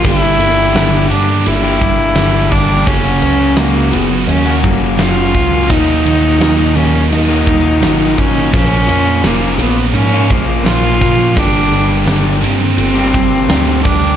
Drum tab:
CC |x-------|--------|x-------|--------|
RD |-xxxxxxx|xxxxxxxx|-xxxxxxx|xxxxxxxx|
SD |--o---o-|--o---o-|--o---o-|--o---o-|
BD |o----o-o|o----o-o|o----o-o|o----o-o|

CC |x-------|
RD |-xxxxxxx|
SD |--o---o-|
BD |o----o-o|